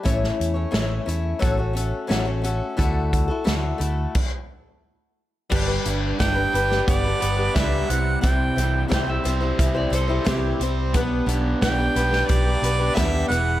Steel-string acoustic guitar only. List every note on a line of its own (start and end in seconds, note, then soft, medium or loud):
0.03 0.56 A2 medium
0.03 0.56 E3 medium
0.03 0.55 A3 medium
0.03 0.55 C#4 medium
0.03 0.54 E4 medium
0.03 0.53 C#5 medium
0.54 0.71 A3 soft
0.54 0.70 C#4 medium
0.54 0.71 E4 soft
0.54 0.71 C#5 medium
0.71 1.07 A2 medium
0.71 1.07 E3 medium
0.71 1.05 A3 medium
0.71 1.05 C#4 medium
0.71 1.06 E4 medium
0.71 1.07 C#5 medium
1.06 1.39 A3 medium
1.06 1.39 C#4 medium
1.06 1.40 E4 medium
1.06 1.41 C#5 medium
1.39 1.58 A2 medium
1.39 1.58 F#3 medium
1.39 1.58 A3 medium
1.39 1.58 C#4 medium
1.39 1.57 F#4 medium
1.39 1.56 A4 medium
1.57 1.72 A3 soft
1.57 1.74 C#4 medium
1.57 1.75 F#4 medium
1.57 1.75 A4 medium
1.73 2.08 A3 medium
1.73 2.08 C#4 medium
1.73 2.08 F#4 medium
1.73 2.09 A4 medium
2.07 2.26 A2 medium
2.07 2.26 F#3 medium
2.07 2.27 A3 medium
2.07 2.26 C#4 medium
2.07 2.25 F#4 medium
2.07 2.24 A4 loud
2.25 2.41 A3 medium
2.25 2.42 C#4 medium
2.25 2.43 F#4 medium
2.25 2.43 A4 medium
2.42 2.76 A3 medium
2.42 2.77 C#4 medium
2.42 2.77 F#4 medium
2.42 2.77 A4 medium
2.77 3.29 D3 medium
2.77 3.29 A3 medium
2.77 3.29 E4 medium
2.77 3.28 F#4 medium
2.77 3.27 A4 medium
3.28 3.44 E4 soft
3.28 3.45 F#4 soft
3.28 3.44 A4 medium
3.44 3.80 D3 medium
3.44 3.77 A3 medium
3.44 3.78 E4 medium
3.44 3.80 F#4 medium
3.44 3.80 A4 medium
3.78 4.14 A3 medium
3.78 4.15 E4 medium
3.78 4.15 F#4 medium
3.78 4.16 A4 medium
5.50 5.68 G3 medium
5.50 5.68 D4 medium
5.50 5.67 G4 medium
5.50 5.66 B4 medium
5.68 5.83 D4 soft
5.68 5.84 G4 medium
5.68 5.85 B4 medium
5.83 6.18 G3 medium
5.83 6.19 D4 medium
5.83 6.19 G4 medium
5.83 6.20 B4 medium
6.19 6.36 G3 medium
6.19 6.37 D4 medium
6.19 6.36 G4 medium
6.19 6.34 B4 medium
6.35 6.53 D4 soft
6.35 6.53 G4 soft
6.35 6.53 B4 medium
6.52 6.70 G3 medium
6.52 6.71 D4 medium
6.52 6.70 G4 medium
6.52 6.69 B4 medium
6.70 7.06 D4 soft
6.70 7.05 G4 soft
6.70 7.03 B4 medium
7.04 7.20 D4 soft
7.04 7.21 G4 soft
7.04 7.21 B4 medium
7.20 7.38 G3 medium
7.20 7.38 D4 medium
7.20 7.37 G4 medium
7.20 7.36 B4 medium
7.37 7.54 D4 soft
7.37 7.55 G4 soft
7.37 7.55 B4 medium
7.55 7.87 G3 medium
7.55 7.89 D4 medium
7.55 7.90 G4 medium
7.55 7.90 B4 medium
7.88 8.22 G3 medium
7.88 8.22 C4 medium
7.88 8.22 E4 medium
7.88 8.23 C5 medium
8.21 8.56 C3 medium
8.21 8.57 E3 medium
8.21 8.54 G3 medium
8.21 8.56 C4 medium
8.21 8.56 E4 medium
8.21 8.58 C5 medium
8.56 8.88 G3 medium
8.56 8.89 C4 medium
8.56 8.90 E4 medium
8.56 8.89 C5 medium
8.88 9.07 C3 medium
8.88 9.07 E3 medium
8.88 9.07 G3 medium
8.88 9.08 C4 medium
8.88 9.06 E4 medium
8.88 9.05 C5 medium
9.07 9.23 G3 soft
9.07 9.24 C4 soft
9.07 9.24 E4 medium
9.07 9.24 C5 medium
9.24 9.41 G3 medium
9.24 9.41 C4 medium
9.24 9.40 E4 medium
9.24 9.39 C5 medium
9.41 9.76 G3 soft
9.41 9.75 C4 medium
9.41 9.74 E4 medium
9.41 9.73 C5 medium
9.75 9.89 G3 soft
9.75 9.91 C4 medium
9.75 9.92 E4 medium
9.75 9.92 C5 medium
9.90 10.08 G3 medium
9.90 10.09 C4 medium
9.90 10.08 E4 medium
9.90 10.06 C5 medium
10.08 10.24 G3 medium
10.08 10.25 C4 medium
10.08 10.25 E4 medium
10.08 10.25 C5 medium
10.25 10.60 C3 medium
10.25 10.60 E3 medium
10.25 10.59 G3 medium
10.25 10.60 C4 loud
10.25 10.60 E4 loud
10.25 10.61 C5 medium
10.60 10.94 G3 medium
10.60 10.95 C4 medium
10.60 10.95 E4 medium
10.60 10.96 C5 medium
10.95 11.25 B3 medium
10.95 11.26 D4 medium
10.95 11.27 G4 loud
10.95 11.29 B4 medium
11.26 11.60 B3 medium
11.26 11.61 D4 medium
11.26 11.62 G4 medium
11.26 11.62 B4 medium
11.62 11.79 B3 medium
11.62 11.79 D4 medium
11.62 11.79 G4 medium
11.62 11.77 B4 medium
11.78 11.94 D4 soft
11.78 11.96 G4 soft
11.78 11.95 B4 soft
11.95 12.12 B3 medium
11.95 12.12 D4 medium
11.95 12.11 G4 medium
11.95 12.10 B4 medium
12.11 12.47 D4 soft
12.11 12.46 G4 soft
12.11 12.44 B4 medium
12.46 12.62 D4 soft
12.46 12.63 G4 soft
12.46 12.63 B4 medium
12.61 12.79 B3 medium
12.61 12.80 D4 medium
12.61 12.80 G4 medium
12.61 12.77 B4 medium
12.79 12.94 D4 soft
12.79 12.95 G4 soft
12.79 12.96 B4 medium
12.94 13.26 B3 medium
12.94 13.28 D4 medium
12.94 13.29 G4 medium
12.94 13.29 B4 medium
13.27 13.60 B3 medium
13.27 13.60 E4 medium
13.27 13.60 G#4 medium
13.27 13.60 B4 medium